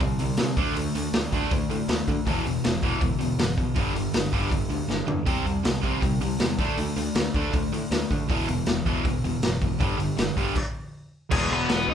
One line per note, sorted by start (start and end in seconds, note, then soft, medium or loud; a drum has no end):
0.00 0.12 C2 medium
0.00 0.17 C3 medium
0.00 0.18 G3 medium
0.00 kick loud
0.00 open hi-hat medium
0.19 0.31 C2 medium
0.19 0.37 C3 medium
0.19 0.37 G3 medium
0.19 open hi-hat medium
0.37 0.56 C3 medium
0.37 0.51 C3 medium
0.37 0.56 G3 medium
0.37 snare loud
0.37 open hi-hat medium
0.57 0.69 D2 medium
0.57 0.75 D3 medium
0.57 0.75 A3 medium
0.57 0.75 D4 medium
0.57 kick loud
0.57 open hi-hat medium
0.76 0.88 D2 medium
0.76 0.93 D3 medium
0.76 0.93 A3 medium
0.76 open hi-hat medium
0.95 1.07 D2 medium
0.95 1.12 D3 medium
0.95 1.13 A3 medium
0.95 open hi-hat medium
1.13 1.25 D2 medium
1.13 1.31 D3 medium
1.13 1.31 A3 medium
1.13 snare loud
1.13 open hi-hat medium
1.32 1.44 D2 medium
1.32 1.50 D3 loud
1.32 1.50 A3 loud
1.32 1.51 D4 loud
1.32 kick medium
1.32 open hi-hat medium
1.51 1.63 D2 medium
1.51 1.68 D3 medium
1.51 1.68 A3 medium
1.51 kick loud
1.51 open hi-hat medium
1.69 1.81 A2 medium
1.69 1.87 D3 medium
1.69 1.87 A3 medium
1.69 open hi-hat medium
1.88 2.00 D2 medium
1.88 2.06 D3 medium
1.88 2.06 A3 medium
1.88 snare loud
1.88 open hi-hat medium
2.07 2.25 D3 medium
2.07 2.19 D3 medium
2.07 2.25 A3 medium
2.07 kick medium
2.07 open hi-hat medium
2.26 2.38 E1 medium
2.26 2.43 E2 medium
2.26 2.44 B2 medium
2.26 2.44 E3 medium
2.26 kick loud
2.26 open hi-hat medium
2.44 2.58 E1 medium
2.44 2.62 E2 medium
2.44 2.62 B2 medium
2.44 open hi-hat medium
2.64 2.77 E1 medium
2.64 2.81 E2 medium
2.64 2.81 B2 medium
2.64 snare loud
2.64 open hi-hat medium
2.83 2.95 E1 medium
2.83 2.99 E2 medium
2.83 3.00 B2 medium
2.83 3.01 E3 loud
2.83 kick medium
2.83 open hi-hat medium
3.01 3.13 E1 medium
3.01 3.18 E2 medium
3.01 3.18 B2 medium
3.01 kick loud
3.01 open hi-hat medium
3.20 3.32 E1 medium
3.20 3.37 E2 medium
3.20 3.38 B2 medium
3.20 open hi-hat medium
3.38 3.62 F#1 medium
3.38 3.56 E2 medium
3.38 3.56 B2 medium
3.38 snare loud
3.38 open hi-hat medium
3.57 3.75 E2 medium
3.57 3.75 B2 medium
3.57 kick medium
3.57 open hi-hat medium
3.76 3.88 G1 medium
3.76 3.93 G2 medium
3.76 3.93 D3 medium
3.76 3.95 G3 medium
3.76 kick loud
3.76 open hi-hat medium
3.94 4.06 G1 medium
3.94 4.12 G2 medium
3.94 4.12 D3 medium
3.94 open hi-hat medium
4.13 4.25 G1 medium
4.13 4.32 G2 medium
4.13 4.32 D3 medium
4.13 snare loud
4.13 open hi-hat medium
4.33 4.45 G1 medium
4.33 4.50 G2 medium
4.33 4.51 D3 medium
4.33 4.52 G3 loud
4.33 kick medium
4.33 open hi-hat medium
4.51 4.63 G1 medium
4.51 4.69 G2 medium
4.51 4.69 D3 medium
4.51 kick loud
4.51 open hi-hat medium
4.69 4.81 D2 medium
4.69 4.87 G2 medium
4.69 4.88 D3 medium
4.69 open hi-hat medium
4.88 5.01 G1 medium
4.88 5.06 G2 medium
4.88 5.07 D3 medium
4.88 snare medium
5.08 5.25 G2 medium
5.08 5.20 G2 medium
5.08 5.25 D3 medium
5.08 floor tom medium
5.26 5.39 C2 medium
5.26 5.45 C3 medium
5.26 5.45 G3 loud
5.26 5.46 C4 loud
5.26 kick loud
5.26 open hi-hat medium
5.45 5.57 C2 medium
5.45 5.64 C3 medium
5.45 5.64 G3 medium
5.45 open hi-hat medium
5.65 5.77 C2 medium
5.65 5.82 C3 medium
5.65 5.82 G3 medium
5.65 snare loud
5.65 open hi-hat medium
5.83 5.96 C2 medium
5.83 6.01 C3 medium
5.83 6.01 G3 medium
5.83 6.03 C4 medium
5.83 kick medium
5.83 open hi-hat medium
6.02 6.14 C2 medium
6.02 6.19 C3 medium
6.02 6.20 G3 medium
6.02 kick loud
6.02 open hi-hat medium
6.21 6.33 C2 medium
6.21 6.38 C3 medium
6.21 6.38 G3 medium
6.21 open hi-hat medium
6.39 6.59 E2 medium
6.39 6.57 C3 medium
6.39 6.57 G3 medium
6.39 snare loud
6.39 open hi-hat medium
6.58 6.71 D2 medium
6.58 6.77 D3 medium
6.58 6.77 A3 medium
6.58 6.78 D4 medium
6.58 kick loud
6.58 open hi-hat medium
6.77 6.90 D2 medium
6.77 6.95 D3 medium
6.77 6.95 A3 medium
6.77 open hi-hat medium
6.96 7.09 D2 medium
6.96 7.14 D3 medium
6.96 7.14 A3 medium
6.96 open hi-hat medium
7.15 7.27 D2 medium
7.15 7.33 D3 medium
7.15 7.33 A3 medium
7.15 snare loud
7.15 open hi-hat medium
7.34 7.46 D2 medium
7.34 7.51 D3 medium
7.34 7.52 A3 medium
7.34 7.53 D4 medium
7.34 kick medium
7.34 open hi-hat medium
7.53 7.65 D2 medium
7.53 7.70 D3 medium
7.53 7.71 A3 medium
7.53 kick loud
7.53 open hi-hat medium
7.72 7.84 A2 medium
7.72 7.90 D3 medium
7.72 7.90 A3 medium
7.72 open hi-hat medium
7.90 8.03 D2 medium
7.90 8.08 D3 medium
7.90 8.09 A3 medium
7.90 snare loud
7.90 open hi-hat medium
8.11 8.22 D3 medium
8.11 8.28 D3 medium
8.11 8.28 A3 medium
8.11 kick medium
8.11 open hi-hat medium
8.29 8.41 E1 medium
8.29 8.47 E2 medium
8.29 8.48 B2 medium
8.29 8.48 E3 loud
8.29 kick loud
8.29 open hi-hat medium
8.48 8.60 E1 medium
8.48 8.65 E2 medium
8.48 8.66 B2 medium
8.48 open hi-hat medium
8.66 8.79 E1 medium
8.66 8.84 E2 medium
8.66 8.84 B2 medium
8.66 snare loud
8.66 open hi-hat medium
8.86 8.98 E1 medium
8.86 9.04 E2 loud
8.86 9.04 B2 loud
8.86 9.04 E3 loud
8.86 kick medium
8.86 open hi-hat medium
9.05 9.16 E1 medium
9.05 9.22 E2 medium
9.05 9.23 B2 medium
9.05 kick loud
9.05 open hi-hat medium
9.24 9.36 E1 medium
9.24 9.41 E2 medium
9.24 9.41 B2 medium
9.24 open hi-hat medium
9.43 9.66 F#1 medium
9.43 9.60 E2 medium
9.43 9.60 B2 medium
9.43 snare loud
9.43 open hi-hat medium
9.62 9.79 E2 medium
9.62 9.79 B2 medium
9.62 kick medium
9.62 open hi-hat medium
9.80 9.92 G1 medium
9.80 9.98 G2 medium
9.80 9.98 D3 medium
9.80 9.98 G3 medium
9.80 kick loud
9.80 open hi-hat medium
9.99 10.11 G1 medium
9.99 10.15 G2 medium
9.99 10.16 D3 medium
9.99 open hi-hat medium
10.17 10.30 G1 medium
10.17 10.34 G2 medium
10.17 10.35 D3 medium
10.17 snare loud
10.17 open hi-hat medium
10.36 10.49 G1 medium
10.36 10.54 G2 medium
10.36 10.55 D3 medium
10.36 10.55 G3 medium
10.36 kick medium
10.36 open hi-hat medium
10.56 kick loud
10.56 crash loud
11.31 11.48 E1 loud
11.31 11.94 E2 medium
11.31 11.94 B2 loud
11.31 11.94 E3 medium
11.31 11.49 G#3 medium
11.31 11.52 G#4 medium
11.31 kick loud
11.31 crash loud
11.31 crash medium
11.50 11.67 E1 loud
11.50 11.86 B3 medium
11.50 11.90 B4 loud
11.69 11.86 E1 loud
11.69 snare loud
11.69 crash medium
11.87 11.94 C#2 medium
11.87 11.94 D#4 medium
11.87 11.94 D#5 loud